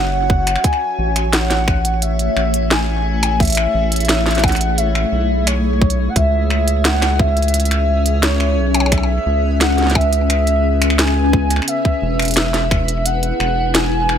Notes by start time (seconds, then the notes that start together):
Already playing: F#1 F#4 C#5 E5 F#5 A5
0.30 kick
0.47 finger snap, closed hi-hat
0.56 finger snap
0.64 A3 G#5, finger snap, kick, closed hi-hat
0.73 finger snap
0.99 A1
1.16 finger snap, closed hi-hat
1.22 E4
1.33 F#5, snare, closed hi-hat
1.51 G#4, snare, closed hi-hat
1.68 finger snap, kick
1.85 closed hi-hat
2.02 E5, closed hi-hat
2.19 closed hi-hat
2.37 A1, finger snap
2.54 closed hi-hat
2.71 G#5, snare
3.23 finger snap, closed hi-hat, percussion blips
3.40 E5, kick, closed hi-hat
3.43 closed hi-hat
3.45 closed hi-hat
3.48 closed hi-hat
3.50 closed hi-hat
3.52 closed hi-hat
3.55 finger snap, closed hi-hat
3.75 A1
3.92 closed hi-hat
3.96 closed hi-hat
4.00 closed hi-hat
4.05 closed hi-hat
4.09 snare, closed hi-hat
4.26 finger snap, snare, closed hi-hat
4.31 finger snap, closed hi-hat
4.35 finger snap, snare, closed hi-hat
4.39 closed hi-hat
4.43 F#5, kick, closed hi-hat, percussion blips
4.48 finger snap, snare, closed hi-hat
4.52 finger snap, closed hi-hat
4.57 closed hi-hat
4.61 closed hi-hat
4.78 E5, closed hi-hat
4.95 finger snap
5.12 B1
5.47 C#5, finger snap, closed hi-hat
5.82 kick
5.90 closed hi-hat
6.09 F#5
6.16 C#2 C#4 E5, kick, closed hi-hat
6.43 E5
6.50 finger snap
6.68 closed hi-hat
6.85 F#5, snare, closed hi-hat
7.02 finger snap, snare, closed hi-hat
7.19 E5, kick
7.37 closed hi-hat
7.41 B4, closed hi-hat
7.48 closed hi-hat
7.54 closed hi-hat
7.60 closed hi-hat
7.65 closed hi-hat
7.71 finger snap, closed hi-hat
8.06 closed hi-hat
8.23 C#5, snare, closed hi-hat
8.40 finger snap
8.57 B1
8.75 closed hi-hat, percussion blips
8.80 percussion blips
8.86 percussion blips
8.92 E5, finger snap, kick, closed hi-hat, percussion blips
8.98 percussion blips
9.03 percussion blips
9.26 C#2
9.61 F#5, finger snap, snare, closed hi-hat
9.78 snare, closed hi-hat
9.83 snare
9.87 snare, closed hi-hat
9.91 snare
9.95 E5, kick, percussion blips
10.01 closed hi-hat
10.13 closed hi-hat
10.30 finger snap, closed hi-hat
10.47 closed hi-hat
10.82 finger snap, closed hi-hat
10.90 finger snap
10.99 G#5, finger snap, snare, closed hi-hat
11.07 finger snap
11.33 kick
11.51 finger snap, closed hi-hat
11.56 finger snap
11.62 finger snap
11.68 E4 E5, closed hi-hat
11.85 kick
12.02 E1
12.19 finger snap, closed hi-hat
12.22 closed hi-hat
12.25 closed hi-hat
12.28 closed hi-hat
12.31 closed hi-hat
12.34 snare, closed hi-hat
12.37 E5, closed hi-hat
12.45 D4
12.54 snare, closed hi-hat
12.71 finger snap, kick
12.88 closed hi-hat
13.06 F#5, closed hi-hat
13.23 closed hi-hat
13.34 G#5
13.40 E1, finger snap
13.75 G#5, snare, closed hi-hat
14.09 finger snap